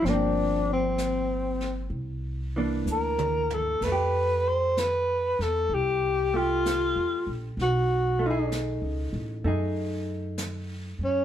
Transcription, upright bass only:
0, 0, Header, 1, 2, 480
1, 0, Start_track
1, 0, Tempo, 943396
1, 24, Time_signature, 4, 2, 24, 8
1, 3384, Tempo, 930233
1, 5756, End_track
2, 0, Start_track
2, 0, Title_t, "Upright bass"
2, 0, Program_c, 0, 32
2, 21, Note_on_c, 0, 31, 59
2, 953, Note_off_c, 0, 31, 0
2, 966, Note_on_c, 0, 36, 55
2, 1432, Note_off_c, 0, 36, 0
2, 1452, Note_on_c, 0, 38, 54
2, 1918, Note_off_c, 0, 38, 0
2, 1940, Note_on_c, 0, 41, 55
2, 2725, Note_off_c, 0, 41, 0
2, 2743, Note_on_c, 0, 40, 55
2, 2893, Note_off_c, 0, 40, 0
2, 2897, Note_on_c, 0, 36, 59
2, 3520, Note_off_c, 0, 36, 0
2, 3543, Note_on_c, 0, 40, 43
2, 3693, Note_off_c, 0, 40, 0
2, 3702, Note_on_c, 0, 34, 47
2, 3853, Note_off_c, 0, 34, 0
2, 3858, Note_on_c, 0, 35, 58
2, 4481, Note_off_c, 0, 35, 0
2, 4502, Note_on_c, 0, 37, 46
2, 4652, Note_off_c, 0, 37, 0
2, 4661, Note_on_c, 0, 33, 59
2, 4811, Note_off_c, 0, 33, 0
2, 4824, Note_on_c, 0, 42, 58
2, 5603, Note_off_c, 0, 42, 0
2, 5621, Note_on_c, 0, 42, 47
2, 5756, Note_off_c, 0, 42, 0
2, 5756, End_track
0, 0, End_of_file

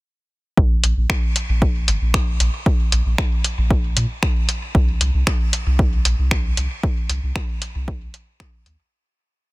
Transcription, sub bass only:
0, 0, Header, 1, 2, 480
1, 0, Start_track
1, 0, Tempo, 521739
1, 529, Time_signature, 4, 2, 24, 8
1, 8759, End_track
2, 0, Start_track
2, 0, Title_t, "Sub bass"
2, 0, Program_c, 0, 38
2, 529, Note_on_c, 0, 34, 101
2, 695, Note_off_c, 0, 34, 0
2, 768, Note_on_c, 0, 34, 86
2, 853, Note_off_c, 0, 34, 0
2, 890, Note_on_c, 0, 34, 94
2, 971, Note_off_c, 0, 34, 0
2, 1370, Note_on_c, 0, 34, 101
2, 1669, Note_off_c, 0, 34, 0
2, 1728, Note_on_c, 0, 32, 90
2, 1813, Note_off_c, 0, 32, 0
2, 1850, Note_on_c, 0, 34, 82
2, 2149, Note_off_c, 0, 34, 0
2, 2208, Note_on_c, 0, 34, 92
2, 2293, Note_off_c, 0, 34, 0
2, 2689, Note_on_c, 0, 34, 84
2, 2773, Note_off_c, 0, 34, 0
2, 2811, Note_on_c, 0, 34, 92
2, 2892, Note_off_c, 0, 34, 0
2, 3291, Note_on_c, 0, 34, 100
2, 3590, Note_off_c, 0, 34, 0
2, 3649, Note_on_c, 0, 46, 93
2, 3733, Note_off_c, 0, 46, 0
2, 4368, Note_on_c, 0, 36, 102
2, 4535, Note_off_c, 0, 36, 0
2, 4608, Note_on_c, 0, 36, 87
2, 4693, Note_off_c, 0, 36, 0
2, 4729, Note_on_c, 0, 36, 93
2, 4811, Note_off_c, 0, 36, 0
2, 5210, Note_on_c, 0, 36, 101
2, 5509, Note_off_c, 0, 36, 0
2, 5567, Note_on_c, 0, 34, 95
2, 5652, Note_off_c, 0, 34, 0
2, 5691, Note_on_c, 0, 36, 86
2, 5990, Note_off_c, 0, 36, 0
2, 6048, Note_on_c, 0, 36, 90
2, 6133, Note_off_c, 0, 36, 0
2, 6528, Note_on_c, 0, 36, 89
2, 6613, Note_off_c, 0, 36, 0
2, 6650, Note_on_c, 0, 36, 94
2, 6731, Note_off_c, 0, 36, 0
2, 7130, Note_on_c, 0, 36, 106
2, 7429, Note_off_c, 0, 36, 0
2, 7968, Note_on_c, 0, 39, 101
2, 8053, Note_off_c, 0, 39, 0
2, 8759, End_track
0, 0, End_of_file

